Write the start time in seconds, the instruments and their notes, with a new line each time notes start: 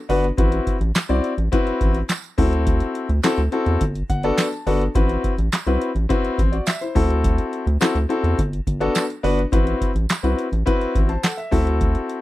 0.09 analog synth bass G1, grand piano B3 D4 F#4 B4, open hi-hat
0.24 closed hi-hat
0.37 analog synth bass A1, grand piano C4 E4 F#4 B4, kick, closed hi-hat
0.52 closed hi-hat
0.67 kick, closed hi-hat
0.81 analog synth bass A1, closed hi-hat
0.95 snare, clap, closed hi-hat, tambourine
1.09 analog synth bass C2, grand piano C4 E4 F#4 D5, closed hi-hat
1.24 closed hi-hat
1.38 analog synth bass A1, closed hi-hat
1.52 grand piano C4 E4 F#4 B4, kick, closed hi-hat
1.67 closed hi-hat
1.81 analog synth bass A1, kick, closed hi-hat
1.94 closed hi-hat
2.09 snare, clap, closed hi-hat, tambourine
2.24 closed hi-hat
2.38 analog synth bass D2, grand piano C4 E4 F#4 A4, kick, open hi-hat
2.53 closed hi-hat
2.67 kick, closed hi-hat
2.80 closed hi-hat
2.95 closed hi-hat
3.09 analog synth bass D2, closed hi-hat
3.23 grand piano C4 E4 F#4 A4, snare, clap, closed hi-hat, tambourine
3.38 analog synth bass D2, closed hi-hat
3.52 grand piano C4 E4 F#4 A4, closed hi-hat
3.66 analog synth bass E2, closed hi-hat
3.81 analog synth bass G1, kick, closed hi-hat
3.95 closed hi-hat
4.10 analog synth bass G1, grand piano F#5, kick, closed hi-hat
4.23 grand piano B3 D4 F#4 A4, closed hi-hat
4.38 grand piano A5, snare, clap, closed hi-hat, tambourine
4.53 closed hi-hat
4.67 analog synth bass G1, grand piano B3 D4 F#4 A4, open hi-hat
4.81 closed hi-hat
4.95 analog synth bass A1, grand piano C4 E4 F#4 B4, kick, closed hi-hat
5.09 closed hi-hat
5.24 kick, closed hi-hat
5.38 analog synth bass A1, closed hi-hat
5.52 snare, clap, closed hi-hat, tambourine
5.66 analog synth bass C2, grand piano C4 E4 F#4 B4, closed hi-hat
5.82 closed hi-hat
5.95 analog synth bass A1, closed hi-hat
6.09 grand piano C4 E4 F#4 B4, kick, closed hi-hat
6.25 closed hi-hat
6.38 analog synth bass A1, kick, closed hi-hat
6.52 grand piano F#4 D5, closed hi-hat
6.67 grand piano E5, snare, clap, closed hi-hat, tambourine
6.81 grand piano E4 C5, closed hi-hat
6.95 analog synth bass D2, grand piano C4 E4 F#4 A4, kick, open hi-hat
7.10 closed hi-hat
7.24 kick, closed hi-hat
7.38 closed hi-hat
7.53 closed hi-hat
7.67 analog synth bass D2, closed hi-hat
7.81 grand piano C4 E4 F#4 A4, snare, clap, closed hi-hat, tambourine
7.95 analog synth bass D2, closed hi-hat
8.09 grand piano C4 E4 F#4 A4, closed hi-hat
8.24 analog synth bass E2, closed hi-hat
8.39 analog synth bass G1, kick, closed hi-hat
8.53 closed hi-hat
8.67 analog synth bass G1, kick, closed hi-hat
8.80 grand piano B3 D4 F#4 A4, closed hi-hat
8.95 snare, clap, closed hi-hat, tambourine
9.10 closed hi-hat
9.23 analog synth bass G1, grand piano B3 D4 F#4 B4, open hi-hat
9.39 closed hi-hat
9.52 analog synth bass A1, grand piano C4 E4 F#4 B4, kick, closed hi-hat
9.67 closed hi-hat
9.81 kick, closed hi-hat
9.95 analog synth bass A1, closed hi-hat
10.09 snare, clap, closed hi-hat, tambourine
10.23 analog synth bass C2, grand piano C4 E4 F#4 B4, closed hi-hat
10.39 closed hi-hat
10.52 analog synth bass A1, closed hi-hat
10.66 grand piano C4 E4 F#4 B4, kick, closed hi-hat
10.81 closed hi-hat
10.95 analog synth bass A1, kick, closed hi-hat
11.09 grand piano C5 A5, closed hi-hat
11.23 grand piano A4 F#5, snare, clap, closed hi-hat, tambourine
11.37 grand piano E5, closed hi-hat
11.51 analog synth bass D2, grand piano C4 E4 F#4 A4, kick, open hi-hat
11.67 closed hi-hat
11.81 kick, closed hi-hat
11.95 closed hi-hat
12.09 closed hi-hat